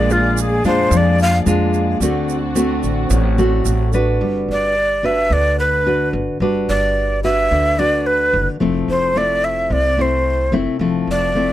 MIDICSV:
0, 0, Header, 1, 6, 480
1, 0, Start_track
1, 0, Tempo, 548948
1, 1764, Time_signature, 4, 2, 24, 8
1, 10079, End_track
2, 0, Start_track
2, 0, Title_t, "Flute"
2, 0, Program_c, 0, 73
2, 0, Note_on_c, 0, 74, 74
2, 102, Note_on_c, 0, 65, 67
2, 115, Note_off_c, 0, 74, 0
2, 356, Note_on_c, 0, 68, 71
2, 370, Note_off_c, 0, 65, 0
2, 578, Note_off_c, 0, 68, 0
2, 583, Note_on_c, 0, 72, 98
2, 847, Note_on_c, 0, 74, 80
2, 860, Note_off_c, 0, 72, 0
2, 1063, Note_off_c, 0, 74, 0
2, 1068, Note_on_c, 0, 77, 106
2, 1205, Note_off_c, 0, 77, 0
2, 3951, Note_on_c, 0, 74, 91
2, 4421, Note_on_c, 0, 76, 83
2, 4435, Note_off_c, 0, 74, 0
2, 4660, Note_on_c, 0, 74, 86
2, 4673, Note_off_c, 0, 76, 0
2, 4887, Note_off_c, 0, 74, 0
2, 4892, Note_on_c, 0, 71, 68
2, 5334, Note_off_c, 0, 71, 0
2, 5853, Note_on_c, 0, 74, 87
2, 6295, Note_off_c, 0, 74, 0
2, 6330, Note_on_c, 0, 76, 95
2, 6811, Note_on_c, 0, 74, 82
2, 6824, Note_off_c, 0, 76, 0
2, 7052, Note_on_c, 0, 71, 72
2, 7065, Note_off_c, 0, 74, 0
2, 7408, Note_off_c, 0, 71, 0
2, 7782, Note_on_c, 0, 72, 81
2, 8023, Note_on_c, 0, 74, 90
2, 8037, Note_off_c, 0, 72, 0
2, 8257, Note_on_c, 0, 76, 93
2, 8270, Note_off_c, 0, 74, 0
2, 8504, Note_on_c, 0, 74, 88
2, 8517, Note_off_c, 0, 76, 0
2, 8757, Note_on_c, 0, 72, 77
2, 8770, Note_off_c, 0, 74, 0
2, 9221, Note_off_c, 0, 72, 0
2, 9714, Note_on_c, 0, 74, 82
2, 10079, Note_off_c, 0, 74, 0
2, 10079, End_track
3, 0, Start_track
3, 0, Title_t, "String section"
3, 0, Program_c, 1, 48
3, 0, Note_on_c, 1, 58, 71
3, 0, Note_on_c, 1, 68, 67
3, 0, Note_on_c, 1, 74, 73
3, 1729, Note_off_c, 1, 68, 0
3, 1731, Note_off_c, 1, 58, 0
3, 1752, Note_on_c, 1, 66, 73
3, 1758, Note_on_c, 1, 60, 78
3, 3645, Note_off_c, 1, 74, 0
3, 3657, Note_off_c, 1, 66, 0
3, 3661, Note_off_c, 1, 60, 0
3, 10079, End_track
4, 0, Start_track
4, 0, Title_t, "Nylon-string guitar"
4, 0, Program_c, 2, 24
4, 0, Note_on_c, 2, 46, 57
4, 0, Note_on_c, 2, 56, 62
4, 0, Note_on_c, 2, 62, 58
4, 0, Note_on_c, 2, 65, 65
4, 525, Note_off_c, 2, 56, 0
4, 529, Note_off_c, 2, 62, 0
4, 531, Note_off_c, 2, 65, 0
4, 566, Note_on_c, 2, 56, 59
4, 569, Note_on_c, 2, 62, 65
4, 575, Note_on_c, 2, 65, 76
4, 779, Note_off_c, 2, 46, 0
4, 811, Note_on_c, 2, 53, 56
4, 1246, Note_off_c, 2, 56, 0
4, 1248, Note_off_c, 2, 62, 0
4, 1251, Note_off_c, 2, 65, 0
4, 1277, Note_on_c, 2, 56, 66
4, 1283, Note_on_c, 2, 62, 63
4, 1290, Note_on_c, 2, 65, 69
4, 1722, Note_off_c, 2, 56, 0
4, 1726, Note_off_c, 2, 62, 0
4, 1727, Note_off_c, 2, 65, 0
4, 1743, Note_off_c, 2, 53, 0
4, 1766, Note_on_c, 2, 50, 60
4, 1766, Note_on_c, 2, 57, 54
4, 1769, Note_on_c, 2, 60, 65
4, 1774, Note_on_c, 2, 66, 66
4, 2074, Note_off_c, 2, 57, 0
4, 2075, Note_off_c, 2, 60, 0
4, 2078, Note_off_c, 2, 66, 0
4, 2233, Note_on_c, 2, 57, 61
4, 2236, Note_on_c, 2, 60, 58
4, 2240, Note_on_c, 2, 66, 61
4, 2701, Note_off_c, 2, 50, 0
4, 2712, Note_on_c, 2, 45, 60
4, 2919, Note_off_c, 2, 57, 0
4, 2920, Note_off_c, 2, 60, 0
4, 2923, Note_off_c, 2, 66, 0
4, 2958, Note_on_c, 2, 57, 71
4, 2958, Note_on_c, 2, 60, 63
4, 2964, Note_on_c, 2, 66, 72
4, 3401, Note_off_c, 2, 60, 0
4, 3402, Note_off_c, 2, 57, 0
4, 3405, Note_off_c, 2, 66, 0
4, 3440, Note_on_c, 2, 62, 66
4, 3446, Note_on_c, 2, 66, 66
4, 3450, Note_on_c, 2, 71, 71
4, 3653, Note_off_c, 2, 45, 0
4, 3687, Note_on_c, 2, 55, 46
4, 4142, Note_off_c, 2, 62, 0
4, 4145, Note_off_c, 2, 66, 0
4, 4146, Note_off_c, 2, 71, 0
4, 4398, Note_on_c, 2, 62, 50
4, 4403, Note_on_c, 2, 66, 50
4, 4410, Note_on_c, 2, 71, 64
4, 4621, Note_off_c, 2, 55, 0
4, 4641, Note_on_c, 2, 50, 51
4, 5082, Note_off_c, 2, 62, 0
4, 5084, Note_off_c, 2, 66, 0
4, 5088, Note_off_c, 2, 71, 0
4, 5127, Note_on_c, 2, 62, 52
4, 5130, Note_on_c, 2, 66, 52
4, 5135, Note_on_c, 2, 71, 55
4, 5567, Note_off_c, 2, 62, 0
4, 5568, Note_off_c, 2, 66, 0
4, 5571, Note_off_c, 2, 71, 0
4, 5578, Note_off_c, 2, 50, 0
4, 5606, Note_on_c, 2, 55, 50
4, 5612, Note_on_c, 2, 62, 50
4, 5613, Note_on_c, 2, 71, 57
4, 5614, Note_on_c, 2, 66, 57
4, 6289, Note_off_c, 2, 62, 0
4, 6289, Note_off_c, 2, 66, 0
4, 6290, Note_off_c, 2, 71, 0
4, 6331, Note_on_c, 2, 62, 50
4, 6333, Note_on_c, 2, 66, 55
4, 6336, Note_on_c, 2, 71, 64
4, 6542, Note_off_c, 2, 55, 0
4, 6575, Note_on_c, 2, 50, 51
4, 6770, Note_off_c, 2, 62, 0
4, 6770, Note_off_c, 2, 66, 0
4, 6771, Note_off_c, 2, 71, 0
4, 6808, Note_on_c, 2, 62, 50
4, 6813, Note_on_c, 2, 66, 51
4, 6817, Note_on_c, 2, 71, 61
4, 7488, Note_off_c, 2, 62, 0
4, 7491, Note_off_c, 2, 66, 0
4, 7492, Note_off_c, 2, 71, 0
4, 7506, Note_off_c, 2, 50, 0
4, 7521, Note_on_c, 2, 53, 47
4, 7522, Note_on_c, 2, 57, 54
4, 7528, Note_on_c, 2, 60, 51
4, 7528, Note_on_c, 2, 64, 51
4, 7964, Note_off_c, 2, 57, 0
4, 7967, Note_off_c, 2, 64, 0
4, 7968, Note_off_c, 2, 60, 0
4, 8007, Note_on_c, 2, 57, 54
4, 8010, Note_on_c, 2, 60, 54
4, 8015, Note_on_c, 2, 64, 53
4, 8459, Note_off_c, 2, 53, 0
4, 8479, Note_on_c, 2, 48, 50
4, 8688, Note_off_c, 2, 57, 0
4, 8690, Note_off_c, 2, 60, 0
4, 8691, Note_off_c, 2, 64, 0
4, 8722, Note_on_c, 2, 57, 46
4, 8730, Note_on_c, 2, 60, 56
4, 8734, Note_on_c, 2, 64, 58
4, 9166, Note_off_c, 2, 57, 0
4, 9170, Note_off_c, 2, 60, 0
4, 9170, Note_off_c, 2, 64, 0
4, 9205, Note_on_c, 2, 57, 59
4, 9210, Note_on_c, 2, 60, 60
4, 9213, Note_on_c, 2, 64, 68
4, 9407, Note_off_c, 2, 57, 0
4, 9410, Note_off_c, 2, 60, 0
4, 9411, Note_off_c, 2, 64, 0
4, 9419, Note_off_c, 2, 48, 0
4, 9449, Note_on_c, 2, 53, 47
4, 9449, Note_on_c, 2, 57, 53
4, 9453, Note_on_c, 2, 60, 51
4, 9453, Note_on_c, 2, 64, 56
4, 9890, Note_off_c, 2, 57, 0
4, 9891, Note_off_c, 2, 60, 0
4, 9892, Note_off_c, 2, 64, 0
4, 9925, Note_on_c, 2, 57, 51
4, 9931, Note_on_c, 2, 60, 51
4, 9936, Note_on_c, 2, 64, 59
4, 10079, Note_off_c, 2, 53, 0
4, 10079, Note_off_c, 2, 57, 0
4, 10079, Note_off_c, 2, 60, 0
4, 10079, Note_off_c, 2, 64, 0
4, 10079, End_track
5, 0, Start_track
5, 0, Title_t, "Upright bass"
5, 0, Program_c, 3, 32
5, 0, Note_on_c, 3, 34, 98
5, 525, Note_off_c, 3, 34, 0
5, 559, Note_on_c, 3, 41, 77
5, 785, Note_off_c, 3, 41, 0
5, 795, Note_on_c, 3, 41, 110
5, 1246, Note_off_c, 3, 41, 0
5, 1278, Note_on_c, 3, 41, 93
5, 1727, Note_off_c, 3, 41, 0
5, 1752, Note_on_c, 3, 38, 94
5, 2442, Note_off_c, 3, 38, 0
5, 2479, Note_on_c, 3, 33, 75
5, 2704, Note_off_c, 3, 33, 0
5, 2714, Note_on_c, 3, 33, 120
5, 3165, Note_off_c, 3, 33, 0
5, 3197, Note_on_c, 3, 33, 101
5, 3646, Note_off_c, 3, 33, 0
5, 3680, Note_on_c, 3, 31, 85
5, 3905, Note_off_c, 3, 31, 0
5, 3922, Note_on_c, 3, 31, 69
5, 4607, Note_off_c, 3, 31, 0
5, 4636, Note_on_c, 3, 38, 86
5, 5325, Note_off_c, 3, 38, 0
5, 5361, Note_on_c, 3, 31, 87
5, 5474, Note_off_c, 3, 31, 0
5, 5598, Note_on_c, 3, 31, 90
5, 5824, Note_off_c, 3, 31, 0
5, 5847, Note_on_c, 3, 31, 75
5, 6530, Note_off_c, 3, 31, 0
5, 6567, Note_on_c, 3, 38, 86
5, 7251, Note_off_c, 3, 38, 0
5, 7287, Note_on_c, 3, 30, 89
5, 7397, Note_off_c, 3, 30, 0
5, 7536, Note_on_c, 3, 29, 89
5, 7754, Note_off_c, 3, 29, 0
5, 7765, Note_on_c, 3, 29, 73
5, 8450, Note_off_c, 3, 29, 0
5, 8485, Note_on_c, 3, 36, 88
5, 9171, Note_off_c, 3, 36, 0
5, 9200, Note_on_c, 3, 29, 88
5, 9314, Note_off_c, 3, 29, 0
5, 9438, Note_on_c, 3, 29, 86
5, 9665, Note_off_c, 3, 29, 0
5, 9683, Note_on_c, 3, 29, 75
5, 10079, Note_off_c, 3, 29, 0
5, 10079, End_track
6, 0, Start_track
6, 0, Title_t, "Drums"
6, 88, Note_on_c, 9, 82, 30
6, 176, Note_off_c, 9, 82, 0
6, 328, Note_on_c, 9, 82, 65
6, 416, Note_off_c, 9, 82, 0
6, 562, Note_on_c, 9, 82, 30
6, 650, Note_off_c, 9, 82, 0
6, 801, Note_on_c, 9, 82, 65
6, 888, Note_off_c, 9, 82, 0
6, 1041, Note_on_c, 9, 82, 28
6, 1129, Note_off_c, 9, 82, 0
6, 1284, Note_on_c, 9, 82, 61
6, 1371, Note_off_c, 9, 82, 0
6, 1518, Note_on_c, 9, 82, 30
6, 1606, Note_off_c, 9, 82, 0
6, 1763, Note_on_c, 9, 82, 68
6, 1851, Note_off_c, 9, 82, 0
6, 2003, Note_on_c, 9, 82, 30
6, 2090, Note_off_c, 9, 82, 0
6, 2240, Note_on_c, 9, 82, 68
6, 2327, Note_off_c, 9, 82, 0
6, 2476, Note_on_c, 9, 82, 29
6, 2564, Note_off_c, 9, 82, 0
6, 2715, Note_on_c, 9, 82, 70
6, 2802, Note_off_c, 9, 82, 0
6, 2960, Note_on_c, 9, 82, 29
6, 3048, Note_off_c, 9, 82, 0
6, 3197, Note_on_c, 9, 82, 59
6, 3284, Note_off_c, 9, 82, 0
6, 3434, Note_on_c, 9, 82, 26
6, 3522, Note_off_c, 9, 82, 0
6, 10079, End_track
0, 0, End_of_file